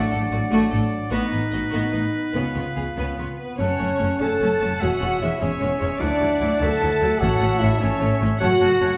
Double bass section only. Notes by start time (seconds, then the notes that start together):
0.12 A1
0.32 A1
0.52 A1
0.72 A1
1.11 A1
1.32 A1
1.52 A1
1.72 A1
1.94 A1
2.35 C#2
2.55 C#2
2.77 C#2
2.97 C#2
3.18 C#2
3.60 F#1
3.80 F#1
4.01 F#1
4.20 F#1
4.41 F#1
4.62 F#1
4.81 E1
5.02 E1
5.21 E1
5.41 E1
5.62 E1
5.81 E1
6.01 D2
6.21 D2
6.41 D2
6.60 D2
6.81 D2
7.01 D2
7.21 A1
7.41 A1
7.61 A1
7.81 A1
8.01 A1
8.21 A1
8.41 F#1
8.61 F#1
8.81 F#1